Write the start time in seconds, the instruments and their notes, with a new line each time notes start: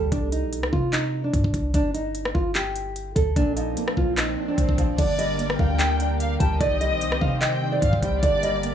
Already playing: 808-style bass D2, harp A#2 G3 A#3 D4, nylon-string guitar A4
0.12 808-style bass C2, nylon-string guitar D4, kick, closed hi-hat
0.32 nylon-string guitar D#4, closed hi-hat
0.43 808-style bass A#1
0.53 closed hi-hat
0.58 808-style bass C2
0.63 cross-stick
0.73 808-style bass C3, nylon-string guitar F4, kick
0.93 nylon-string guitar D#4, clap, closed hi-hat
1.24 nylon-string guitar D4
1.34 808-style bass G2, kick, closed hi-hat
1.44 808-style bass C2, kick
1.54 808-style bass C2, kick, closed hi-hat
1.74 808-style bass G1, nylon-string guitar D4, kick, closed hi-hat
1.94 nylon-string guitar D#4, closed hi-hat
2.15 closed hi-hat
2.25 cross-stick
2.34 808-style bass G1, nylon-string guitar F4, kick
2.55 nylon-string guitar G4, clap, closed hi-hat
2.76 closed hi-hat
2.96 closed hi-hat
3.16 808-style bass D2, nylon-string guitar A4, kick, closed hi-hat
3.36 808-style bass A#1, harp A#2, nylon-string guitar D4, kick, closed hi-hat, swell
3.56 harp F3, nylon-string guitar D#4, closed hi-hat
3.77 harp A#3, closed hi-hat
3.88 cross-stick
3.97 808-style bass A#1, nylon-string guitar F4, kick
4.17 nylon-string guitar D#4, cross-stick, clap, closed hi-hat
4.37 harp D4
4.48 nylon-string guitar D4
4.58 808-style bass A#1, kick, closed hi-hat
4.69 808-style bass A#1, kick
4.78 808-style bass A#1, harp F3, kick, closed hi-hat
4.98 808-style bass G1, harp D3, analog synth pad D3 A#3 G4 A#4, violin section D5, nylon-string guitar D5, kick, closed hi-hat, crash
5.18 harp G3, nylon-string guitar D#5, closed hi-hat
5.39 harp A#3, closed hi-hat
5.50 cross-stick
5.59 808-style bass D2, nylon-string guitar F5, violin section G5, kick
5.79 nylon-string guitar G5, clap, closed hi-hat
6.00 harp D4, closed hi-hat
6.20 violin section F5, closed hi-hat
6.40 808-style bass D2, harp G3, violin section G5, nylon-string guitar A5, kick, closed hi-hat
6.60 808-style bass C2, harp D#3, analog synth pad D#3 C4 C5, nylon-string guitar D5, violin section D#5, kick, closed hi-hat
6.81 harp G3, nylon-string guitar D#5, closed hi-hat
6.92 808-style bass A#1
7.01 harp C4, closed hi-hat
7.06 808-style bass C2
7.12 cross-stick
7.21 808-style bass C3, nylon-string guitar F5, kick
7.41 nylon-string guitar D#5, violin section G5, clap, closed hi-hat
7.62 harp D4
7.72 nylon-string guitar D5
7.82 808-style bass G2, violin section F5, kick, closed hi-hat
7.93 808-style bass C2, kick
8.02 808-style bass C2, harp G3, violin section G5, kick, closed hi-hat
8.23 808-style bass G1, analog synth pad D3 A#3 G4 A#4, harp D3, violin section D5, nylon-string guitar D5, kick, closed hi-hat
8.43 harp G3, nylon-string guitar D#5, closed hi-hat
8.63 harp A#3, closed hi-hat